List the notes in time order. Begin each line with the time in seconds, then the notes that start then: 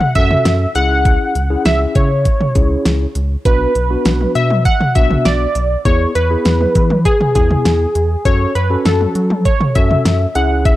Already playing: F#5
0.01 mid tom
0.15 F#2 C#4 F#4 A4 E5, kick, closed hi-hat
0.31 mid tom
0.45 F#2, snare, closed hi-hat
0.75 C#2 C#4 E4 G#4 F#5, closed hi-hat
1.05 kick, closed hi-hat
1.35 C#2, closed hi-hat
1.50 C#4 E4 G#4
1.65 C#2 E5, snare, closed hi-hat
1.95 C#3 C#5, kick, closed hi-hat
2.25 kick, closed hi-hat
2.41 mid tom
2.55 C#2 C#4 E4 G#4, kick, closed hi-hat
2.85 C#2, snare, closed hi-hat
3.15 C#2, closed hi-hat
3.45 B1 B3 D4 F#4 B4, kick, closed hi-hat
3.75 B1, closed hi-hat
3.90 B3 D4 F#4
4.05 B1, snare, closed hi-hat
4.21 mid tom
4.35 B2 E5, closed hi-hat
4.50 mid tom
4.65 F#5, kick, closed hi-hat
4.81 mid tom
4.95 B1 B3 D4 F#4 E5, kick, closed hi-hat
5.11 mid tom
5.25 B1 D5, snare, closed hi-hat
5.55 B1, closed hi-hat
5.85 E2 B3 E4 G#4 C#5, kick, closed hi-hat
6.15 E2 B4, closed hi-hat
6.30 B3 E4 G#4
6.45 E2, snare, closed hi-hat
6.61 mid tom
6.75 E3, kick, closed hi-hat
6.90 mid tom
7.05 G#4, kick, closed hi-hat
7.21 mid tom
7.35 E2 B3 E4 G#4, kick, closed hi-hat
7.51 mid tom
7.65 E2, snare, closed hi-hat
7.95 E2, closed hi-hat
8.25 F#2 C#4 F#4 A4 C#5, kick, closed hi-hat
8.55 F#2 B4, closed hi-hat
8.70 C#4 F#4 A4
8.85 F#2 A4, snare, closed hi-hat
9.01 mid tom
9.15 F#3, closed hi-hat
9.30 mid tom
9.45 C#5, kick, closed hi-hat
9.61 mid tom
9.75 F#2 C#4 F#4 A4 E5, kick, closed hi-hat
9.91 mid tom
10.05 F#2, snare, closed hi-hat
10.35 C#2 C#4 E4 G#4 F#5, closed hi-hat
10.65 E5, kick, closed hi-hat